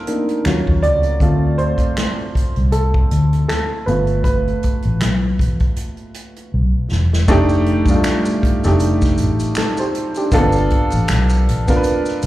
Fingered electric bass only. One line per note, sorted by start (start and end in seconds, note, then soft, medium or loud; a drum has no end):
0.46 0.64 D#2 medium
0.68 0.84 D#2 medium
0.84 1.17 C#2 medium
1.21 1.73 D2 medium
2.36 muted fingered electric bass stroke soft
2.57 3.04 C2 medium
3.12 3.45 D2 medium
3.87 4.54 G1 medium
4.85 5.01 A1 medium
5.01 5.40 B1 medium
5.40 5.58 A1 medium
6.54 6.72 B1 medium
6.91 7.24 E1 medium
7.29 7.81 F1 loud
8.44 muted fingered electric bass stroke soft
8.65 9.19 F1 medium
9.19 9.52 A1 medium
10.33 10.66 G1 loud
10.93 11.07 A1 medium
11.10 11.48 B1 medium
11.48 11.66 A1 medium